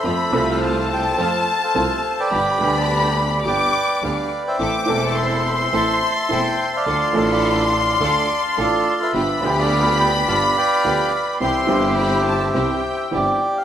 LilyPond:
<<
  \new Staff \with { instrumentName = "Violin section" } { \time 4/4 \key g \mixolydian \tempo 4 = 105 b''4 a''2. | b''2 d'''4. r8 | d'''4 c'''2. | c'''1 |
b''1 | c'''4 b''8 a''8 g''4. r8 | }
  \new Staff \with { instrumentName = "Bandoneon" } { \time 4/4 \key g \mixolydian << { e''8. f''8. g''8 a''8. f''4 g''16~ | g''8. a''8. b''8 g''4 f''8. g''16~ | g''8. a''8. b''8 c'''8. r16 g''8. a''16~ | a''8. b''8. c'''8 d'''8. r16 d''8. e''16~ |
e''8. f''8. g''8 a''8 g''4 f''8 | e''2. d''8. f''16 | } \\ { <a' c''>8. <a' c''>4~ <a' c''>16 <c'' f''>8. <a' c''>4 <b' d''>16~ | <b' d''>8. d''4~ d''16 <b' d''>4 <b' d''>8. <c'' e''>16~ | <c'' e''>8. <c'' e''>4~ <c'' e''>16 <e'' a''>4 <c'' e''>8. <d'' f''>16~ | <d'' f''>8. <d'' f''>4~ <d'' f''>16 <f'' a''>4 <f' a'>8. b'16~ |
b'8. <b' d''>4~ <b' d''>16 <d'' f''>8 <b' d''>4. | <g' c''>2. g'4 | } >> }
  \new Staff \with { instrumentName = "String section" } { \time 4/4 \key g \mixolydian <a c' f'>8 <a c' f'>4. <a c' f'>8 r8 <a c' f'>8 r8 | <b d' g'>8 <b d' g'>4. <b d' g'>8 r8 <b d' g'>8 r8 | <c' e' a'>8 <c' e' a'>4. <c' e' a'>8 r8 <c' e' a'>8 r8 | <d' f' a'>8 <d' f' a'>4. <d' f' a'>8 r8 <d' f' a'>8 r8 |
<b f' g'>8 <b f' g'>4. <b f' g'>8 r8 <b f' g'>8 r8 | <c' e' g'>8 <c' e' g'>4. <c' e' g'>8 r8 <c' e' g'>8 r8 | }
  \new Staff \with { instrumentName = "Grand piano" } { \clef bass \time 4/4 \key g \mixolydian <f, f a c' a'>8 <c, c f a c' a'>4. <f, f a c' a'>8 r8 <c, c f a c' a'>8 r8 | <g,, g, d g b g'>8 <d, d g b g'>4. <g,, g, d g b g'>8 r8 <d, d g b g'>8 r8 | <a,, a, e a c' a'>8 <e,, e, e a c' a'>4. <a,, a, e a c' a'>8 r8 <e,, e, e a c' a'>8 r8 | <d, d f a d' a'>8 <a,, a, f a d' a'>4. <d, d f a d' a'>8 r8 <a,, a, f a d' a'>8 r8 |
<g,, g, f b d' g'>8 <d, d f b d' g'>4. <g,, g, f b d' g'>8 r8 <d, d f b d' g'>8 r8 | <c, c e g c' g'>8 <g,, g, e g c' g'>4. <c, c e g c' g'>8 r8 <g,, g, e g c' g'>8 r8 | }
  \new Staff \with { instrumentName = "Double bass" } { \clef bass \time 4/4 \key g \mixolydian f,8 c,4. f,8 r8 c,8 r8 | g,,8 d,4. g,,8 r8 d,8 r8 | a,,8 e,,4. a,,8 r8 e,,8 r8 | d,8 a,,4. d,8 r8 a,,8 r8 |
g,,8 d,4. g,,8 r8 d,8 r8 | c,8 g,,4. c,8 r8 g,,8 r8 | }
>>